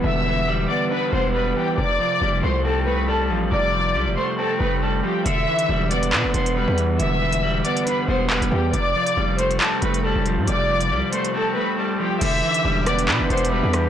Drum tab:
CC |------------------------------------------------|------------------------------------------------|------------------------------------------------|------------------------------------------------|
HH |------------------------------------------------|------------------------------------------------|------------------------------------------------|x--------x--------x--x--------x--x--------x-----|
CP |------------------------------------------------|------------------------------------------------|------------------------------------------------|------------------------x-----------------------|
SD |------------------------------------------------|------------------------------------------------|------------------------------------------------|------------------------------------------------|

CC |------------------------------------------------|------------------------------------------------|------------------------------------------------|x-----------------------------------------------|
HH |x--------x--------x--x--x--------------x--------|x--------x--------x--x--------x--x--------x-----|x--------x--------x--x--------------------------|x--------x--------x--x--------x-x-x-------x-----|
CP |------------------------------------x-----------|------------------------x-----------------------|------------------------------------------------|------------------------x-----------------------|
SD |------------------------------------------------|------------------------------------------------|------------------------------------------------|------------------r-----------------------r-----|